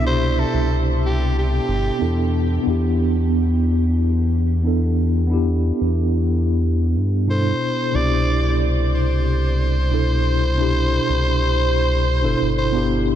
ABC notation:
X:1
M:4/4
L:1/16
Q:1/4=91
K:C
V:1 name="Soprano saxophone"
c2 A2 z2 G2 G6 z2 | z16 | z12 c4 | d4 z2 c8- c2- |
c12 c2 z2 |]
V:2 name="Tine electric piano"
[B,,DEG]12 [B,DEA]4 | [B,DEG]12 [B,DEA]4 | [B,DEG]12 [B,,DEA]4 | [B,,DEG]12 [B,,DEA]4 |
[B,,DEG]8- [B,,DEG]2 [B,,DEA]3 [B,DEG]3 |]
V:3 name="Analog synth bass" clef=bass
C,,2 z C,,6 z G,,, z E,,3 z | E,,16- | E,,2 z E,,6- E,, G,,3 z3 | C,,16- |
C,,2 z C,,6- C,, G,,, G,,,4 z |]